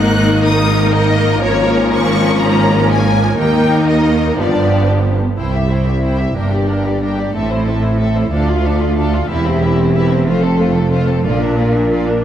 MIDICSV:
0, 0, Header, 1, 7, 480
1, 0, Start_track
1, 0, Tempo, 327690
1, 2089, Time_signature, 12, 3, 24, 8
1, 17935, End_track
2, 0, Start_track
2, 0, Title_t, "Violin section"
2, 0, Program_c, 0, 48
2, 0, Note_on_c, 0, 90, 86
2, 638, Note_off_c, 0, 90, 0
2, 649, Note_on_c, 0, 87, 86
2, 1354, Note_off_c, 0, 87, 0
2, 1370, Note_on_c, 0, 75, 83
2, 2074, Note_off_c, 0, 75, 0
2, 2088, Note_on_c, 0, 73, 81
2, 2793, Note_off_c, 0, 73, 0
2, 2820, Note_on_c, 0, 85, 84
2, 3519, Note_off_c, 0, 85, 0
2, 3528, Note_on_c, 0, 82, 79
2, 4245, Note_off_c, 0, 82, 0
2, 4261, Note_on_c, 0, 80, 79
2, 4960, Note_off_c, 0, 80, 0
2, 4965, Note_on_c, 0, 79, 76
2, 5675, Note_off_c, 0, 79, 0
2, 5690, Note_on_c, 0, 75, 64
2, 6405, Note_off_c, 0, 75, 0
2, 6423, Note_on_c, 0, 74, 59
2, 7139, Note_off_c, 0, 74, 0
2, 7880, Note_on_c, 0, 79, 29
2, 8104, Note_off_c, 0, 79, 0
2, 8128, Note_on_c, 0, 76, 28
2, 8366, Note_off_c, 0, 76, 0
2, 8373, Note_on_c, 0, 79, 27
2, 8608, Note_on_c, 0, 76, 29
2, 8609, Note_off_c, 0, 79, 0
2, 8846, Note_off_c, 0, 76, 0
2, 8855, Note_on_c, 0, 79, 28
2, 9073, Note_off_c, 0, 79, 0
2, 9086, Note_on_c, 0, 76, 26
2, 9324, Note_off_c, 0, 76, 0
2, 9324, Note_on_c, 0, 79, 32
2, 9547, Note_off_c, 0, 79, 0
2, 9556, Note_on_c, 0, 74, 28
2, 9800, Note_off_c, 0, 74, 0
2, 9825, Note_on_c, 0, 79, 30
2, 10054, Note_off_c, 0, 79, 0
2, 10073, Note_on_c, 0, 74, 33
2, 10297, Note_on_c, 0, 79, 31
2, 10298, Note_off_c, 0, 74, 0
2, 10514, Note_off_c, 0, 79, 0
2, 10535, Note_on_c, 0, 74, 31
2, 10768, Note_off_c, 0, 74, 0
2, 10776, Note_on_c, 0, 76, 36
2, 10991, Note_on_c, 0, 72, 33
2, 10992, Note_off_c, 0, 76, 0
2, 11234, Note_off_c, 0, 72, 0
2, 11240, Note_on_c, 0, 76, 35
2, 11472, Note_on_c, 0, 72, 34
2, 11477, Note_off_c, 0, 76, 0
2, 11698, Note_on_c, 0, 76, 36
2, 11712, Note_off_c, 0, 72, 0
2, 11926, Note_off_c, 0, 76, 0
2, 11947, Note_on_c, 0, 72, 33
2, 12186, Note_on_c, 0, 77, 41
2, 12187, Note_off_c, 0, 72, 0
2, 12409, Note_off_c, 0, 77, 0
2, 12425, Note_on_c, 0, 74, 39
2, 12665, Note_off_c, 0, 74, 0
2, 12665, Note_on_c, 0, 77, 37
2, 12903, Note_off_c, 0, 77, 0
2, 12921, Note_on_c, 0, 74, 41
2, 13139, Note_on_c, 0, 77, 37
2, 13150, Note_off_c, 0, 74, 0
2, 13362, Note_off_c, 0, 77, 0
2, 13376, Note_on_c, 0, 74, 41
2, 13608, Note_on_c, 0, 76, 44
2, 13616, Note_off_c, 0, 74, 0
2, 13834, Note_off_c, 0, 76, 0
2, 13841, Note_on_c, 0, 72, 41
2, 14088, Note_off_c, 0, 72, 0
2, 14090, Note_on_c, 0, 76, 42
2, 14332, Note_off_c, 0, 76, 0
2, 14345, Note_on_c, 0, 72, 40
2, 14579, Note_off_c, 0, 72, 0
2, 14588, Note_on_c, 0, 76, 39
2, 14804, Note_off_c, 0, 76, 0
2, 14823, Note_on_c, 0, 72, 41
2, 15035, Note_off_c, 0, 72, 0
2, 15052, Note_on_c, 0, 72, 43
2, 15275, Note_off_c, 0, 72, 0
2, 15287, Note_on_c, 0, 69, 39
2, 15520, Note_on_c, 0, 72, 41
2, 15530, Note_off_c, 0, 69, 0
2, 15758, Note_on_c, 0, 69, 45
2, 15766, Note_off_c, 0, 72, 0
2, 15998, Note_on_c, 0, 72, 41
2, 16004, Note_off_c, 0, 69, 0
2, 16226, Note_off_c, 0, 72, 0
2, 16233, Note_on_c, 0, 69, 39
2, 16481, Note_off_c, 0, 69, 0
2, 16498, Note_on_c, 0, 74, 43
2, 16718, Note_off_c, 0, 74, 0
2, 16736, Note_on_c, 0, 70, 39
2, 16972, Note_on_c, 0, 74, 36
2, 16975, Note_off_c, 0, 70, 0
2, 17209, Note_on_c, 0, 70, 36
2, 17214, Note_off_c, 0, 74, 0
2, 17445, Note_on_c, 0, 74, 37
2, 17454, Note_off_c, 0, 70, 0
2, 17676, Note_off_c, 0, 74, 0
2, 17699, Note_on_c, 0, 70, 34
2, 17935, Note_off_c, 0, 70, 0
2, 17935, End_track
3, 0, Start_track
3, 0, Title_t, "Violin section"
3, 0, Program_c, 1, 48
3, 0, Note_on_c, 1, 63, 65
3, 0, Note_on_c, 1, 70, 64
3, 2029, Note_off_c, 1, 63, 0
3, 2085, Note_on_c, 1, 61, 67
3, 4905, Note_off_c, 1, 70, 0
3, 4964, Note_off_c, 1, 61, 0
3, 4969, Note_on_c, 1, 70, 52
3, 4973, Note_on_c, 1, 63, 54
3, 6392, Note_off_c, 1, 70, 0
3, 6395, Note_off_c, 1, 63, 0
3, 6419, Note_on_c, 1, 67, 44
3, 6423, Note_on_c, 1, 62, 47
3, 7639, Note_off_c, 1, 67, 0
3, 7641, Note_off_c, 1, 62, 0
3, 7876, Note_on_c, 1, 72, 29
3, 8099, Note_on_c, 1, 76, 26
3, 8102, Note_off_c, 1, 72, 0
3, 8351, Note_off_c, 1, 76, 0
3, 8351, Note_on_c, 1, 72, 27
3, 8598, Note_off_c, 1, 72, 0
3, 8605, Note_on_c, 1, 76, 29
3, 8832, Note_on_c, 1, 72, 27
3, 8845, Note_off_c, 1, 76, 0
3, 9060, Note_off_c, 1, 72, 0
3, 9072, Note_on_c, 1, 76, 25
3, 9318, Note_off_c, 1, 76, 0
3, 9326, Note_on_c, 1, 70, 29
3, 9548, Note_off_c, 1, 70, 0
3, 9556, Note_on_c, 1, 67, 30
3, 9800, Note_off_c, 1, 67, 0
3, 9813, Note_on_c, 1, 70, 31
3, 10049, Note_off_c, 1, 70, 0
3, 10055, Note_on_c, 1, 67, 31
3, 10286, Note_on_c, 1, 70, 31
3, 10289, Note_off_c, 1, 67, 0
3, 10500, Note_on_c, 1, 67, 33
3, 10508, Note_off_c, 1, 70, 0
3, 10751, Note_off_c, 1, 67, 0
3, 10751, Note_on_c, 1, 69, 37
3, 10978, Note_off_c, 1, 69, 0
3, 10983, Note_on_c, 1, 72, 33
3, 11226, Note_on_c, 1, 69, 35
3, 11230, Note_off_c, 1, 72, 0
3, 11463, Note_on_c, 1, 72, 35
3, 11470, Note_off_c, 1, 69, 0
3, 11702, Note_on_c, 1, 69, 32
3, 11708, Note_off_c, 1, 72, 0
3, 11929, Note_off_c, 1, 69, 0
3, 11941, Note_on_c, 1, 72, 33
3, 12181, Note_on_c, 1, 69, 38
3, 12184, Note_off_c, 1, 72, 0
3, 12406, Note_off_c, 1, 69, 0
3, 12414, Note_on_c, 1, 65, 37
3, 12659, Note_off_c, 1, 65, 0
3, 12670, Note_on_c, 1, 69, 38
3, 12887, Note_on_c, 1, 65, 42
3, 12906, Note_off_c, 1, 69, 0
3, 13134, Note_off_c, 1, 65, 0
3, 13148, Note_on_c, 1, 69, 40
3, 13367, Note_off_c, 1, 69, 0
3, 13372, Note_on_c, 1, 65, 42
3, 13614, Note_off_c, 1, 65, 0
3, 13617, Note_on_c, 1, 67, 45
3, 13839, Note_off_c, 1, 67, 0
3, 13842, Note_on_c, 1, 64, 40
3, 14088, Note_off_c, 1, 64, 0
3, 14088, Note_on_c, 1, 67, 41
3, 14318, Note_on_c, 1, 64, 45
3, 14330, Note_off_c, 1, 67, 0
3, 14555, Note_on_c, 1, 67, 39
3, 14566, Note_off_c, 1, 64, 0
3, 14782, Note_on_c, 1, 64, 38
3, 14786, Note_off_c, 1, 67, 0
3, 15029, Note_on_c, 1, 65, 43
3, 15037, Note_off_c, 1, 64, 0
3, 15263, Note_off_c, 1, 65, 0
3, 15272, Note_on_c, 1, 69, 42
3, 15504, Note_on_c, 1, 65, 40
3, 15522, Note_off_c, 1, 69, 0
3, 15745, Note_on_c, 1, 69, 43
3, 15758, Note_off_c, 1, 65, 0
3, 15990, Note_on_c, 1, 65, 39
3, 15997, Note_off_c, 1, 69, 0
3, 16222, Note_off_c, 1, 65, 0
3, 16225, Note_on_c, 1, 69, 42
3, 16468, Note_on_c, 1, 65, 43
3, 16477, Note_off_c, 1, 69, 0
3, 16702, Note_off_c, 1, 65, 0
3, 16720, Note_on_c, 1, 62, 37
3, 16966, Note_on_c, 1, 65, 38
3, 16967, Note_off_c, 1, 62, 0
3, 17199, Note_on_c, 1, 62, 41
3, 17211, Note_off_c, 1, 65, 0
3, 17449, Note_off_c, 1, 62, 0
3, 17470, Note_on_c, 1, 65, 33
3, 17690, Note_off_c, 1, 65, 0
3, 17697, Note_on_c, 1, 62, 34
3, 17935, Note_off_c, 1, 62, 0
3, 17935, End_track
4, 0, Start_track
4, 0, Title_t, "French horn section"
4, 0, Program_c, 2, 60
4, 0, Note_on_c, 2, 58, 68
4, 0, Note_on_c, 2, 63, 65
4, 2030, Note_off_c, 2, 63, 0
4, 2086, Note_on_c, 2, 65, 67
4, 4903, Note_off_c, 2, 58, 0
4, 4906, Note_off_c, 2, 65, 0
4, 4973, Note_on_c, 2, 58, 54
4, 4978, Note_on_c, 2, 63, 54
4, 6394, Note_off_c, 2, 58, 0
4, 6397, Note_off_c, 2, 63, 0
4, 6414, Note_on_c, 2, 59, 46
4, 6419, Note_on_c, 2, 65, 45
4, 7100, Note_off_c, 2, 59, 0
4, 7102, Note_off_c, 2, 65, 0
4, 7140, Note_on_c, 2, 62, 56
4, 7372, Note_off_c, 2, 62, 0
4, 7389, Note_on_c, 2, 60, 49
4, 7628, Note_on_c, 2, 59, 44
4, 7632, Note_off_c, 2, 60, 0
4, 7740, Note_off_c, 2, 59, 0
4, 7860, Note_on_c, 2, 60, 32
4, 7861, Note_on_c, 2, 64, 33
4, 9254, Note_off_c, 2, 60, 0
4, 9255, Note_off_c, 2, 64, 0
4, 9306, Note_on_c, 2, 58, 33
4, 9308, Note_on_c, 2, 62, 36
4, 10754, Note_off_c, 2, 58, 0
4, 10755, Note_off_c, 2, 62, 0
4, 10755, Note_on_c, 2, 60, 37
4, 10762, Note_on_c, 2, 64, 40
4, 12186, Note_off_c, 2, 60, 0
4, 12189, Note_off_c, 2, 64, 0
4, 12189, Note_on_c, 2, 57, 45
4, 12191, Note_on_c, 2, 65, 45
4, 13377, Note_off_c, 2, 57, 0
4, 13377, Note_off_c, 2, 65, 0
4, 13626, Note_on_c, 2, 60, 55
4, 13630, Note_on_c, 2, 67, 50
4, 15031, Note_off_c, 2, 67, 0
4, 15047, Note_on_c, 2, 69, 50
4, 16436, Note_off_c, 2, 60, 0
4, 16486, Note_off_c, 2, 69, 0
4, 16487, Note_on_c, 2, 70, 51
4, 16491, Note_on_c, 2, 62, 51
4, 17913, Note_off_c, 2, 70, 0
4, 17914, Note_off_c, 2, 62, 0
4, 17935, End_track
5, 0, Start_track
5, 0, Title_t, "Viola section"
5, 0, Program_c, 3, 48
5, 0, Note_on_c, 3, 51, 62
5, 0, Note_on_c, 3, 58, 63
5, 2030, Note_off_c, 3, 51, 0
5, 2093, Note_on_c, 3, 53, 63
5, 4903, Note_off_c, 3, 58, 0
5, 4955, Note_on_c, 3, 58, 51
5, 4959, Note_on_c, 3, 51, 51
5, 4968, Note_off_c, 3, 53, 0
5, 6385, Note_off_c, 3, 58, 0
5, 6387, Note_off_c, 3, 51, 0
5, 6416, Note_on_c, 3, 59, 45
5, 6419, Note_on_c, 3, 53, 41
5, 7637, Note_off_c, 3, 59, 0
5, 7639, Note_off_c, 3, 53, 0
5, 7864, Note_on_c, 3, 64, 29
5, 8096, Note_off_c, 3, 64, 0
5, 8129, Note_on_c, 3, 67, 28
5, 8348, Note_on_c, 3, 64, 28
5, 8366, Note_off_c, 3, 67, 0
5, 8594, Note_on_c, 3, 67, 31
5, 8597, Note_off_c, 3, 64, 0
5, 8826, Note_on_c, 3, 64, 27
5, 8839, Note_off_c, 3, 67, 0
5, 9057, Note_off_c, 3, 64, 0
5, 9067, Note_on_c, 3, 67, 27
5, 9315, Note_off_c, 3, 67, 0
5, 9319, Note_on_c, 3, 62, 28
5, 9544, Note_off_c, 3, 62, 0
5, 9553, Note_on_c, 3, 67, 31
5, 9798, Note_off_c, 3, 67, 0
5, 9799, Note_on_c, 3, 62, 29
5, 10041, Note_off_c, 3, 62, 0
5, 10044, Note_on_c, 3, 67, 31
5, 10284, Note_off_c, 3, 67, 0
5, 10301, Note_on_c, 3, 62, 30
5, 10516, Note_off_c, 3, 62, 0
5, 10516, Note_on_c, 3, 67, 31
5, 10759, Note_off_c, 3, 67, 0
5, 10778, Note_on_c, 3, 60, 35
5, 10992, Note_off_c, 3, 60, 0
5, 11018, Note_on_c, 3, 64, 33
5, 11245, Note_on_c, 3, 60, 33
5, 11247, Note_off_c, 3, 64, 0
5, 11480, Note_off_c, 3, 60, 0
5, 11492, Note_on_c, 3, 64, 36
5, 11722, Note_off_c, 3, 64, 0
5, 11730, Note_on_c, 3, 60, 35
5, 11944, Note_off_c, 3, 60, 0
5, 11966, Note_on_c, 3, 64, 34
5, 12196, Note_off_c, 3, 64, 0
5, 12203, Note_on_c, 3, 62, 37
5, 12418, Note_off_c, 3, 62, 0
5, 12443, Note_on_c, 3, 65, 41
5, 12674, Note_off_c, 3, 65, 0
5, 12693, Note_on_c, 3, 62, 38
5, 12917, Note_off_c, 3, 62, 0
5, 12919, Note_on_c, 3, 65, 37
5, 13149, Note_off_c, 3, 65, 0
5, 13153, Note_on_c, 3, 62, 38
5, 13369, Note_off_c, 3, 62, 0
5, 13392, Note_on_c, 3, 65, 38
5, 13624, Note_off_c, 3, 65, 0
5, 13627, Note_on_c, 3, 64, 43
5, 13844, Note_off_c, 3, 64, 0
5, 13873, Note_on_c, 3, 60, 40
5, 14098, Note_on_c, 3, 64, 41
5, 14104, Note_off_c, 3, 60, 0
5, 14336, Note_off_c, 3, 64, 0
5, 14336, Note_on_c, 3, 60, 43
5, 14569, Note_on_c, 3, 64, 41
5, 14575, Note_off_c, 3, 60, 0
5, 14794, Note_off_c, 3, 64, 0
5, 14801, Note_on_c, 3, 60, 43
5, 15045, Note_on_c, 3, 57, 42
5, 15047, Note_off_c, 3, 60, 0
5, 15272, Note_off_c, 3, 57, 0
5, 15284, Note_on_c, 3, 60, 41
5, 15516, Note_on_c, 3, 57, 38
5, 15528, Note_off_c, 3, 60, 0
5, 15764, Note_off_c, 3, 57, 0
5, 15766, Note_on_c, 3, 60, 38
5, 15999, Note_on_c, 3, 57, 37
5, 16008, Note_off_c, 3, 60, 0
5, 16226, Note_off_c, 3, 57, 0
5, 16232, Note_on_c, 3, 60, 41
5, 16480, Note_off_c, 3, 60, 0
5, 16489, Note_on_c, 3, 58, 42
5, 16713, Note_off_c, 3, 58, 0
5, 16735, Note_on_c, 3, 62, 39
5, 16962, Note_on_c, 3, 58, 36
5, 16974, Note_off_c, 3, 62, 0
5, 17196, Note_on_c, 3, 62, 39
5, 17209, Note_off_c, 3, 58, 0
5, 17444, Note_on_c, 3, 58, 35
5, 17448, Note_off_c, 3, 62, 0
5, 17676, Note_off_c, 3, 58, 0
5, 17701, Note_on_c, 3, 62, 35
5, 17935, Note_off_c, 3, 62, 0
5, 17935, End_track
6, 0, Start_track
6, 0, Title_t, "Cello section"
6, 0, Program_c, 4, 48
6, 0, Note_on_c, 4, 44, 60
6, 2027, Note_off_c, 4, 44, 0
6, 2089, Note_on_c, 4, 44, 62
6, 4908, Note_off_c, 4, 44, 0
6, 4955, Note_on_c, 4, 39, 55
6, 6385, Note_off_c, 4, 39, 0
6, 6416, Note_on_c, 4, 43, 51
6, 7613, Note_off_c, 4, 43, 0
6, 7881, Note_on_c, 4, 36, 34
6, 9265, Note_off_c, 4, 36, 0
6, 9319, Note_on_c, 4, 43, 36
6, 10753, Note_on_c, 4, 45, 43
6, 10761, Note_off_c, 4, 43, 0
6, 12156, Note_off_c, 4, 45, 0
6, 12183, Note_on_c, 4, 38, 47
6, 13586, Note_off_c, 4, 38, 0
6, 13616, Note_on_c, 4, 40, 52
6, 15023, Note_off_c, 4, 40, 0
6, 15049, Note_on_c, 4, 41, 53
6, 16484, Note_on_c, 4, 46, 48
6, 16487, Note_off_c, 4, 41, 0
6, 17935, Note_off_c, 4, 46, 0
6, 17935, End_track
7, 0, Start_track
7, 0, Title_t, "Double bass section"
7, 0, Program_c, 5, 48
7, 0, Note_on_c, 5, 32, 57
7, 2028, Note_off_c, 5, 32, 0
7, 2086, Note_on_c, 5, 32, 64
7, 4906, Note_off_c, 5, 32, 0
7, 4965, Note_on_c, 5, 39, 50
7, 6390, Note_off_c, 5, 39, 0
7, 6426, Note_on_c, 5, 31, 47
7, 7618, Note_off_c, 5, 31, 0
7, 7873, Note_on_c, 5, 36, 34
7, 9260, Note_off_c, 5, 36, 0
7, 9320, Note_on_c, 5, 31, 35
7, 10751, Note_on_c, 5, 33, 39
7, 10761, Note_off_c, 5, 31, 0
7, 12155, Note_off_c, 5, 33, 0
7, 12195, Note_on_c, 5, 38, 44
7, 13592, Note_off_c, 5, 38, 0
7, 13611, Note_on_c, 5, 28, 47
7, 15021, Note_off_c, 5, 28, 0
7, 15034, Note_on_c, 5, 29, 51
7, 16480, Note_off_c, 5, 29, 0
7, 16481, Note_on_c, 5, 34, 47
7, 17935, Note_off_c, 5, 34, 0
7, 17935, End_track
0, 0, End_of_file